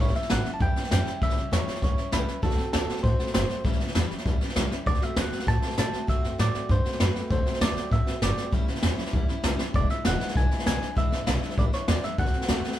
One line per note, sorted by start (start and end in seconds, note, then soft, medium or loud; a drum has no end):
0.00 0.14 A1 medium
0.00 0.15 A2 medium
0.00 0.15 E3 medium
0.00 0.15 G3 medium
0.00 0.15 C#4 medium
0.00 0.13 E4 medium
0.00 0.15 C#5 loud
0.08 snare soft
0.15 0.30 G3 soft
0.15 0.31 C#4 medium
0.15 0.30 E4 medium
0.15 0.31 E5 loud
0.15 muted upright bass stroke medium
0.15 snare soft
0.22 snare soft
0.30 0.44 A1 loud
0.30 0.45 A2 medium
0.30 0.46 E3 medium
0.30 0.46 G3 medium
0.30 0.45 C#4 medium
0.30 0.43 E4 medium
0.30 0.53 F#5 loud
0.30 snare loud
0.30 hi-hat pedal medium
0.45 0.59 G3 soft
0.45 0.61 C#4 soft
0.45 0.60 E4 medium
0.45 snare soft
0.54 0.61 A5 medium
0.59 0.75 E2 medium
0.59 0.75 E3 medium
0.59 0.76 G3 medium
0.59 0.75 C#4 medium
0.59 0.74 E4 medium
0.59 0.90 G5 loud
0.59 kick loud
0.59 snare soft
0.75 0.90 G3 soft
0.75 0.91 C#4 medium
0.75 0.91 E4 medium
0.75 muted upright bass stroke medium
0.75 snare soft
0.83 snare soft
0.90 1.05 F#2 loud
0.90 1.06 A2 medium
0.90 1.06 E3 medium
0.90 1.07 G3 medium
0.90 1.06 C#4 medium
0.90 1.04 E4 medium
0.90 1.23 G5 loud
0.90 snare loud
0.90 hi-hat pedal medium
1.06 1.22 G3 soft
1.06 1.22 C#4 medium
1.06 1.21 E4 medium
1.06 muted upright bass stroke medium
1.06 snare soft
1.22 1.35 A1 medium
1.22 1.37 A2 medium
1.22 1.37 E3 medium
1.22 1.37 G3 medium
1.22 1.37 C#4 loud
1.22 1.35 E4 medium
1.22 1.51 E5 loud
1.22 kick loud
1.22 snare soft
1.30 snare soft
1.36 1.51 C#2 medium
1.36 1.52 G3 soft
1.36 1.52 C#4 medium
1.36 1.52 E4 medium
1.36 snare soft
1.51 1.66 E2 loud
1.51 1.67 A2 medium
1.51 1.67 E3 medium
1.51 1.68 G3 medium
1.51 1.67 C#4 medium
1.51 1.66 E4 loud
1.51 1.83 C#5 loud
1.51 snare loud
1.51 hi-hat pedal medium
1.67 1.82 G3 soft
1.67 1.83 C#4 soft
1.67 1.82 E4 medium
1.67 muted upright bass stroke medium
1.67 snare soft
1.75 snare soft
1.81 1.96 D2 medium
1.81 1.97 E3 medium
1.81 1.98 G3 medium
1.81 1.97 C#4 medium
1.81 1.95 E4 medium
1.81 2.13 C#5 medium
1.81 kick loud
1.81 snare soft
1.97 2.11 G3 soft
1.97 2.12 C#4 soft
1.97 2.12 E4 medium
1.97 muted upright bass stroke medium
1.97 snare soft
2.12 2.27 C#2 medium
2.12 2.27 A2 medium
2.12 2.28 E3 medium
2.12 2.28 G3 medium
2.12 2.27 C#4 loud
2.12 2.25 E4 medium
2.12 2.43 B4 medium
2.12 snare loud
2.12 hi-hat pedal medium
2.27 2.43 G3 soft
2.27 2.43 C#4 medium
2.27 2.42 E4 medium
2.27 snare soft
2.42 2.57 D2 medium
2.42 2.58 D3 medium
2.42 2.58 A3 medium
2.42 2.57 C4 medium
2.42 2.55 F#4 loud
2.42 2.71 A4 medium
2.42 kick loud
2.42 snare soft
2.50 snare soft
2.56 2.73 A3 soft
2.56 2.73 C4 medium
2.56 2.73 F#4 medium
2.56 muted upright bass stroke medium
2.56 snare soft
2.73 2.88 D2 loud
2.73 2.89 D3 medium
2.73 2.89 A3 medium
2.73 2.89 C4 medium
2.73 2.87 F#4 medium
2.73 3.02 A4 medium
2.73 snare loud
2.73 hi-hat pedal medium
2.88 3.04 A3 soft
2.88 3.05 C4 medium
2.88 3.04 F#4 medium
2.88 muted upright bass stroke medium
2.88 snare soft
2.97 snare soft
3.03 3.18 A2 loud
3.03 3.19 D3 medium
3.03 3.20 A3 medium
3.03 3.20 C4 medium
3.03 3.18 F#4 medium
3.03 3.32 C5 medium
3.03 kick loud
3.03 snare soft
3.19 3.33 A3 soft
3.19 3.34 C4 medium
3.19 3.34 F#4 medium
3.19 muted upright bass stroke medium
3.19 snare soft
3.27 snare soft
3.33 3.48 G1 loud
3.33 3.49 D3 medium
3.33 3.50 A3 medium
3.33 3.50 C4 medium
3.33 3.48 F#4 loud
3.33 3.63 C5 medium
3.33 snare loud
3.33 hi-hat pedal medium
3.49 3.65 A3 soft
3.49 3.65 C4 medium
3.49 3.65 F#4 medium
3.49 snare soft
3.64 3.79 A1 medium
3.64 3.80 A2 medium
3.64 3.80 E3 medium
3.64 3.80 G3 medium
3.64 3.80 C#4 medium
3.64 3.78 E4 loud
3.64 kick loud
3.64 snare soft
3.72 snare soft
3.79 3.94 C#2 medium
3.79 3.95 G3 soft
3.79 3.95 C#4 medium
3.79 3.95 E4 medium
3.79 snare soft
3.87 snare soft
3.95 4.09 E2 loud
3.95 4.10 A2 medium
3.95 4.11 E3 loud
3.95 4.11 G3 loud
3.95 4.10 C#4 loud
3.95 4.08 E4 loud
3.95 snare loud
3.95 hi-hat pedal medium
4.10 4.26 G3 medium
4.10 4.26 C#4 medium
4.10 4.25 E4 medium
4.10 muted upright bass stroke medium
4.10 snare soft
4.18 snare soft
4.25 4.40 D2 medium
4.25 4.41 E3 medium
4.25 4.42 G3 medium
4.25 4.42 C#4 medium
4.25 4.40 E4 medium
4.25 kick loud
4.25 snare soft
4.41 4.56 G3 soft
4.41 4.56 C#4 medium
4.41 4.56 E4 medium
4.41 muted upright bass stroke medium
4.41 snare soft
4.49 snare soft
4.56 4.70 C#2 loud
4.56 4.71 A2 medium
4.56 4.72 E3 medium
4.56 4.72 G3 loud
4.56 4.72 C#4 medium
4.56 4.70 E4 medium
4.56 snare loud
4.56 hi-hat pedal medium
4.71 4.87 G3 medium
4.71 4.88 C#4 medium
4.71 4.87 E4 medium
4.71 muted upright bass stroke medium
4.71 snare soft
4.86 5.00 D2 loud
4.86 5.02 D3 medium
4.86 5.02 A3 medium
4.86 5.02 C4 loud
4.86 5.00 F#4 loud
4.86 5.03 D5 loud
4.86 kick loud
4.86 snare soft
4.94 snare soft
5.01 5.16 A3 medium
5.01 5.16 C4 medium
5.01 5.17 F#4 medium
5.01 5.18 E5 medium
5.01 muted upright bass stroke medium
5.01 snare soft
5.16 5.31 D2 loud
5.16 5.32 D3 medium
5.16 5.32 A3 medium
5.16 5.33 C4 loud
5.16 5.31 F#4 medium
5.16 5.48 F#5 loud
5.16 snare loud
5.16 hi-hat pedal medium
5.32 5.47 A3 soft
5.32 5.48 C4 medium
5.32 5.47 F#4 medium
5.32 muted upright bass stroke medium
5.32 snare soft
5.39 snare soft
5.47 5.61 A2 loud
5.47 5.63 D3 medium
5.47 5.63 A3 medium
5.47 5.63 C4 medium
5.47 5.61 F#4 medium
5.47 5.78 A5 loud
5.47 kick loud
5.47 snare soft
5.62 5.77 A3 soft
5.62 5.78 C4 medium
5.62 5.78 F#4 medium
5.62 muted upright bass stroke medium
5.62 snare soft
5.70 snare soft
5.78 5.92 B2 loud
5.78 5.93 D3 medium
5.78 5.94 A3 medium
5.78 5.93 C4 medium
5.78 5.91 F#4 loud
5.78 6.09 A5 loud
5.78 snare loud
5.78 hi-hat pedal medium
5.92 6.07 A3 medium
5.92 6.08 C4 soft
5.92 6.08 F#4 medium
5.92 muted upright bass stroke medium
5.92 snare soft
6.07 6.22 D2 medium
6.07 6.23 D3 medium
6.07 6.24 A3 medium
6.07 6.24 C4 medium
6.07 6.22 F#4 medium
6.07 6.40 E5 loud
6.07 kick loud
6.07 snare soft
6.23 6.38 F#2 medium
6.23 6.38 A3 soft
6.23 6.39 C4 medium
6.23 6.39 F#4 medium
6.23 snare soft
6.38 6.53 A2 loud
6.38 6.54 D3 medium
6.38 6.55 A3 medium
6.38 6.54 C4 medium
6.38 6.52 F#4 loud
6.38 6.71 D5 loud
6.38 snare loud
6.38 hi-hat pedal medium
6.53 6.69 A3 medium
6.53 6.70 C4 soft
6.53 6.69 F#4 medium
6.53 muted upright bass stroke medium
6.53 snare soft
6.69 6.83 G2 loud
6.69 6.85 D3 medium
6.69 6.85 A3 medium
6.69 6.85 C4 medium
6.69 6.83 F#4 medium
6.69 7.01 C5 medium
6.69 kick loud
6.69 snare soft
6.85 6.99 A3 soft
6.85 7.00 C4 medium
6.85 7.00 F#4 medium
6.85 muted upright bass stroke medium
6.85 snare soft
6.92 snare soft
7.00 7.14 F#2 medium
7.00 7.15 D3 medium
7.00 7.16 A3 medium
7.00 7.15 C4 medium
7.00 7.13 F#4 loud
7.00 7.31 B4 medium
7.00 snare loud
7.00 hi-hat pedal medium
7.15 7.30 A3 soft
7.15 7.31 C4 medium
7.15 7.30 F#4 medium
7.15 muted upright bass stroke medium
7.15 snare soft
7.30 7.44 D2 loud
7.30 7.46 D3 medium
7.30 7.46 A3 medium
7.30 7.46 C4 medium
7.30 7.44 F#4 medium
7.30 7.63 C5 loud
7.30 kick loud
7.30 snare soft
7.46 7.61 A3 medium
7.46 7.62 C4 medium
7.46 7.61 F#4 medium
7.46 muted upright bass stroke medium
7.46 snare soft
7.54 snare soft
7.61 7.75 D2 loud
7.61 7.76 D3 medium
7.61 7.77 A3 medium
7.61 7.77 C4 medium
7.61 7.75 F#4 loud
7.61 7.92 D5 loud
7.61 snare loud
7.61 hi-hat pedal medium
7.76 7.91 A3 soft
7.76 7.92 C4 medium
7.76 7.91 F#4 medium
7.76 muted upright bass stroke medium
7.76 snare soft
7.91 8.06 A2 loud
7.91 8.07 D3 medium
7.91 8.07 A3 medium
7.91 8.07 C4 medium
7.91 8.05 F#4 medium
7.91 8.21 E5 medium
7.91 kick loud
7.91 snare soft
8.06 8.21 A3 soft
8.06 8.22 C4 soft
8.06 8.22 F#4 medium
8.06 muted upright bass stroke medium
8.06 snare soft
8.21 8.36 G1 loud
8.21 8.37 D3 medium
8.21 8.38 A3 medium
8.21 8.38 C4 medium
8.21 8.35 F#4 medium
8.21 8.51 D5 medium
8.21 snare loud
8.21 hi-hat pedal medium
8.37 8.53 A3 soft
8.37 8.53 C4 medium
8.37 8.52 F#4 medium
8.37 snare soft
8.52 8.66 A1 loud
8.52 8.67 A2 medium
8.52 8.68 E3 medium
8.52 8.68 G3 medium
8.52 8.67 C#4 medium
8.52 8.65 E4 medium
8.52 kick loud
8.52 snare soft
8.66 8.82 C#2 medium
8.66 8.82 G3 medium
8.66 8.83 C#4 medium
8.66 8.82 E4 medium
8.66 snare soft
8.75 snare soft
8.82 8.97 E2 loud
8.82 8.98 A2 loud
8.82 8.98 E3 loud
8.82 8.98 G3 medium
8.82 8.98 C#4 loud
8.82 8.96 E4 loud
8.82 snare loud
8.82 hi-hat pedal medium
8.97 9.13 G3 medium
8.97 9.14 C#4 medium
8.97 9.13 E4 medium
8.97 muted upright bass stroke medium
8.97 snare soft
9.06 snare soft
9.13 9.27 D2 loud
9.13 9.29 E3 medium
9.13 9.29 G3 medium
9.13 9.29 C#4 medium
9.13 9.27 E4 medium
9.13 kick loud
9.28 9.43 G3 medium
9.28 9.43 C#4 medium
9.28 9.44 E4 medium
9.28 muted upright bass stroke medium
9.28 snare soft
9.43 9.58 C#2 medium
9.43 9.59 A2 medium
9.43 9.59 E3 medium
9.43 9.60 G3 medium
9.43 9.59 C#4 medium
9.43 9.57 E4 medium
9.43 snare loud
9.43 hi-hat pedal medium
9.58 9.75 G3 medium
9.58 9.75 C#4 soft
9.58 9.74 E4 medium
9.58 muted upright bass stroke medium
9.58 snare medium
9.74 9.88 E1 loud
9.74 9.90 E2 medium
9.74 9.90 B2 medium
9.74 9.90 E3 medium
9.74 9.90 G#3 medium
9.74 9.90 D4 medium
9.74 9.88 E4 medium
9.74 9.90 D5 medium
9.74 kick loud
9.74 snare soft
9.90 10.05 E3 soft
9.90 10.05 G#3 medium
9.90 10.06 D4 medium
9.90 10.05 E4 medium
9.90 10.06 E5 medium
9.90 muted upright bass stroke medium
9.90 snare soft
10.05 10.19 E1 loud
10.05 10.20 E2 medium
10.05 10.21 B2 medium
10.05 10.21 E3 medium
10.05 10.21 G#3 medium
10.05 10.20 D4 loud
10.05 10.19 E4 medium
10.05 10.36 F#5 loud
10.05 snare loud
10.05 hi-hat pedal medium
10.20 10.34 E3 medium
10.20 10.35 G#3 medium
10.20 10.36 D4 medium
10.20 10.35 E4 medium
10.20 snare soft
10.28 snare soft
10.35 10.49 B1 medium
10.35 10.51 E3 medium
10.35 10.51 G#3 medium
10.35 10.51 D4 medium
10.35 10.50 E4 medium
10.35 10.66 G#5 medium
10.35 kick loud
10.35 snare soft
10.51 10.66 E3 soft
10.51 10.66 G#3 medium
10.51 10.67 D4 medium
10.51 10.66 E4 medium
10.51 muted upright bass stroke medium
10.51 snare soft
10.59 snare soft
10.66 10.80 C#2 medium
10.66 10.81 E2 medium
10.66 10.82 B2 medium
10.66 10.82 E3 medium
10.66 10.82 G#3 medium
10.66 10.81 D4 medium
10.66 10.79 E4 medium
10.66 10.95 G#5 medium
10.66 snare loud
10.66 hi-hat pedal loud
10.80 10.95 E3 soft
10.80 10.96 G#3 soft
10.80 10.96 D4 medium
10.80 10.96 E4 medium
10.80 muted upright bass stroke medium
10.80 snare soft
10.95 11.10 E1 medium
10.95 11.11 E2 medium
10.95 11.12 B2 medium
10.95 11.12 E3 medium
10.95 11.12 G#3 medium
10.95 11.11 D4 medium
10.95 11.10 E4 medium
10.95 11.54 E5 loud
10.95 kick loud
10.95 snare soft
11.11 11.26 G#1 medium
11.11 11.26 E3 medium
11.11 11.27 G#3 medium
11.11 11.27 D4 medium
11.11 11.27 E4 medium
11.11 snare soft
11.26 11.41 B1 loud
11.26 11.42 E2 medium
11.26 11.42 B2 medium
11.26 11.43 E3 medium
11.26 11.43 G#3 medium
11.26 11.42 D4 medium
11.26 11.40 E4 loud
11.26 snare loud
11.26 hi-hat pedal medium
11.42 11.55 E3 medium
11.42 11.57 G#3 medium
11.42 11.58 D4 medium
11.42 11.57 E4 medium
11.42 muted upright bass stroke medium
11.42 snare soft
11.50 snare soft
11.57 11.71 A1 medium
11.57 11.72 E3 medium
11.57 11.73 G#3 medium
11.57 11.72 D4 medium
11.57 11.70 E4 medium
11.57 11.64 D5 medium
11.57 kick loud
11.57 snare soft
11.72 11.87 E3 soft
11.72 11.88 G#3 medium
11.72 11.88 D4 medium
11.72 11.87 E4 medium
11.72 11.89 C#5 medium
11.72 snare soft
11.88 12.03 E2 medium
11.88 12.02 E2 loud
11.88 12.03 B2 medium
11.88 12.03 E3 medium
11.88 12.04 G#3 loud
11.88 12.03 D4 medium
11.88 12.01 E4 medium
11.88 12.04 D5 medium
11.88 snare loud
11.88 hi-hat pedal medium
12.02 12.18 E3 soft
12.02 12.19 G#3 soft
12.02 12.19 D4 medium
12.02 12.18 E4 medium
12.02 12.18 E5 medium
12.02 muted upright bass stroke medium
12.02 snare soft
12.18 12.32 D2 loud
12.18 12.34 D3 medium
12.18 12.34 A3 medium
12.18 12.34 C4 medium
12.18 12.32 F#4 medium
12.18 12.79 F#5 loud
12.18 kick loud
12.18 snare soft
12.26 snare soft
12.33 12.48 A3 soft
12.33 12.49 C4 medium
12.33 12.49 F#4 medium
12.33 muted upright bass stroke medium
12.33 snare soft
12.41 snare soft
12.48 12.63 D2 loud
12.48 12.64 D3 medium
12.48 12.64 A3 medium
12.48 12.64 C4 medium
12.48 12.62 F#4 medium
12.48 snare loud
12.48 hi-hat pedal medium
12.64 12.79 A3 medium
12.64 12.79 C4 medium
12.64 12.79 F#4 medium
12.64 muted upright bass stroke medium
12.64 snare soft
12.72 snare soft